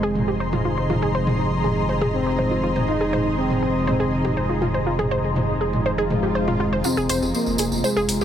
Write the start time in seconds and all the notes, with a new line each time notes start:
Already playing: F1 F2 C3 D#3 F3 G#3 D#4 G#4 C5 D#5 A#5 C6
0.03 G#4
0.15 mid tom
0.28 G4
0.40 C5
0.53 F4, mid tom
0.65 F4
0.78 C5
0.90 F4, mid tom
1.02 G#4
1.15 C5
1.27 mid tom
1.64 G#4, mid tom
1.89 C5
2.01 G#4, mid tom
2.14 C4
2.26 G4
2.39 C5, mid tom
2.51 F4
2.63 F4
2.76 C5, mid tom
2.88 D#4 F4
3.01 G#4
3.13 C5, mid tom
3.38 C4
3.50 mid tom
3.63 G#4
3.87 C4 C5, mid tom
4.00 G#4
4.25 G4, mid tom
4.37 C5
4.49 F4
4.62 F4, mid tom
4.74 C5
4.86 F4
4.99 G#4, mid tom
5.11 C5
5.36 mid tom
5.61 G#4
5.73 mid tom
5.86 C5, swell
5.98 G#4
6.10 G#3, mid tom
6.23 G4
6.35 C5
6.48 F4, mid tom
6.60 F4
6.73 C5
6.84 F2 C3 F3 C4 F4, tambourine
6.97 F1 G#4, tambourine
7.09 F1 C5, open hi-hat, tambourine
7.22 F1, tambourine
7.34 A#3, tambourine
7.46 F1 G#5, tambourine
7.58 F1 G#4, open hi-hat, tambourine
7.72 F1 C5, tambourine
7.84 G#3 C5, tambourine
7.96 F1 G#4, tambourine
8.09 F1, open hi-hat, tambourine
8.21 F1 G4, tambourine